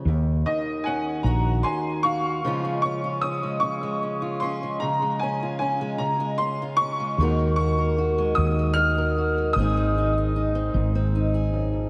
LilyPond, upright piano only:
\new Staff \with { instrumentName = "Upright piano" } { \time 6/8 \key des \major \tempo 4. = 50 << { r4 aes''8 bes''8 c'''8 des'''8~ | des'''8 des'''8 ees'''8 des'''4 c'''8 | bes''8 aes''8 aes''8 bes''8 c'''8 des'''8~ | des'''8 des'''4 ees'''8 f'''4 |
ees'''2~ ees'''8 r8 | } \\ { r8 ees''8 ges''4 aes''8 f''8 | r2. | r2. | r2. |
r2. | } >> }